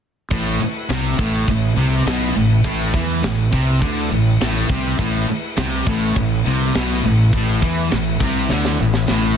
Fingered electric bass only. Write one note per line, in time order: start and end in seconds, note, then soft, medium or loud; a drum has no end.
0.31 0.59 A1 medium
0.62 muted fingered electric bass stroke soft
0.90 1.17 C2 medium
1.18 1.46 A1 medium
1.48 1.75 A1 medium
1.76 2.04 C2 medium
2.07 2.34 B1 medium
2.37 2.64 A1 medium
2.64 2.92 A1 medium
2.94 3.21 E2 medium
3.24 3.51 A1 medium
3.53 3.80 C2 medium
3.82 4.09 D2 medium
4.11 4.39 A1 medium
4.42 4.68 A1 medium
4.69 4.97 C2 medium
4.99 5.26 A1 medium
5.29 muted fingered electric bass stroke soft
5.58 5.85 C2 medium
5.87 6.14 A1 loud
6.16 6.43 A1 medium
6.46 6.73 C2 medium
6.76 7.03 B1 medium
7.05 7.32 A1 medium
7.33 7.61 A1 medium
7.62 7.89 E2 medium
7.93 8.20 A1 medium
8.20 8.48 C2 loud
8.51 8.78 D2 medium
8.81 9.07 A1 medium
9.10 9.37 A1 medium